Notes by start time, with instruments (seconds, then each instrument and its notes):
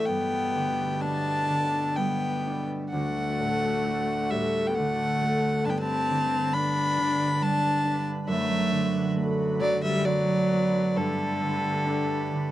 Already playing: harp A2 E3 E4 A4, accordion A3
0.06 harp G2, accordion B2 G3, viola B3, fiddle G5
0.55 harp D3
1.01 harp B3, viola D4, fiddle A5
1.49 harp D3
1.96 harp G3, viola B3, fiddle G5
2.47 harp D4
2.90 harp D2, accordion D3 F#4, viola A3, fiddle F#5
3.40 harp A2
3.86 harp F#4
4.30 harp A2, viola G3, fiddle E5
4.67 viola B3, fiddle G5
4.74 harp D3, viola A3, fiddle F#5
5.21 harp A3
5.63 accordion G2 D3 B4, harp G2, viola D4, fiddle A5
5.70 viola B3, fiddle G5
5.78 viola C4, fiddle A5
6.10 harp D3
6.53 harp B3, viola D4, fiddle B5
6.98 harp D3
7.42 harp G3, viola D4, fiddle A5
7.85 harp D4
8.27 accordion F#2 F#3, harp F#2, viola A3, fiddle E5
8.72 harp D3
9.16 harp A3
9.60 harp D3, viola F#3, fiddle D5
9.84 viola G3, fiddle E5
10.05 harp F#3, viola F#3, fiddle D5
10.51 harp B3
10.94 harp G2, viola D3, accordion G3 A3, fiddle A4
11.42 harp D3
11.86 harp D4
12.32 harp D3